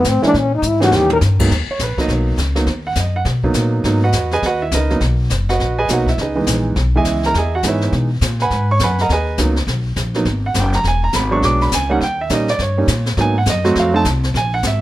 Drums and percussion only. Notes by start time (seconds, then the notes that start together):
0.04 kick, snare, hi-hat pedal
0.23 snare
0.34 brush sweep, kick, snare
0.63 hi-hat pedal
0.81 snare
0.92 snare
1.10 floor tom
1.21 snare, hi-hat pedal
1.39 kick, crash
1.51 brush sweep, snare
1.79 kick, snare, hi-hat pedal
1.98 kick, snare
2.08 brush sweep, kick, snare
2.38 kick, snare, hi-hat pedal
2.56 snare
2.66 brush sweep, kick, snare
2.95 kick, snare, hi-hat pedal
3.25 brush sweep, kick, snare
3.44 kick
3.54 kick, snare, hi-hat pedal
3.84 brush sweep, kick, snare
4.12 kick, snare, hi-hat pedal
4.31 snare
4.42 brush sweep, kick, snare
4.72 kick, snare, hi-hat pedal
4.90 snare
5.00 brush sweep, kick, snare
5.30 kick, snare, hi-hat pedal
5.49 snare
5.59 brush sweep, kick, snare
5.88 kick, snare, hi-hat pedal
6.07 kick, snare
6.18 brush sweep, snare
6.47 kick, snare, hi-hat pedal
6.76 brush sweep, kick, snare
7.04 kick, snare, hi-hat pedal
7.23 snare
7.34 brush sweep, kick, snare
7.63 kick, snare, hi-hat pedal
7.81 snare
7.92 brush sweep, kick, snare
8.21 kick, snare, hi-hat pedal
8.39 snare
8.51 brush sweep, kick, snare
8.79 kick, snare, hi-hat pedal
8.98 snare
9.09 brush sweep, kick, snare
9.37 kick, snare, hi-hat pedal
9.56 snare
9.67 brush sweep, kick, snare
9.96 kick, snare, hi-hat pedal
10.14 snare
10.25 brush sweep, kick, snare
10.54 kick, snare, hi-hat pedal
10.73 snare
10.84 brush sweep, kick, snare
11.13 kick, snare, hi-hat pedal
11.42 brush sweep, kick, snare
11.61 snare
11.72 kick, snare, hi-hat pedal
12.01 brush sweep, kick, snare
12.29 kick, snare, hi-hat pedal
12.48 snare
12.59 brush sweep, kick, snare
12.88 kick, snare, hi-hat pedal
13.06 snare
13.17 brush sweep, kick, snare
13.46 kick, snare, hi-hat pedal
13.64 snare
13.75 brush sweep, kick, snare
14.05 kick, snare, hi-hat pedal
14.23 snare
14.34 brush sweep, kick, snare
14.63 kick, snare, hi-hat pedal